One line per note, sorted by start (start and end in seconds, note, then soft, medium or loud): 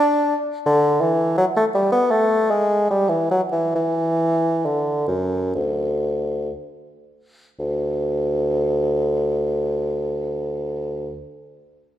0.00 0.35 D4 loud
0.66 1.02 D3 medium
1.01 1.36 E3 medium
1.38 1.46 F#3 medium
1.57 1.64 A3 medium
1.75 1.91 G3 medium
1.92 2.12 B3 medium
2.11 2.52 A3 medium
2.51 2.90 G#3 medium
2.91 3.10 G3 medium
3.09 3.31 E3 medium
3.31 3.41 F#3 medium
3.52 3.74 E3 medium
3.75 4.67 E3 medium
4.66 5.07 D3 medium
5.08 5.54 F#2 medium
5.55 6.51 D2 medium
7.59 11.21 D2 medium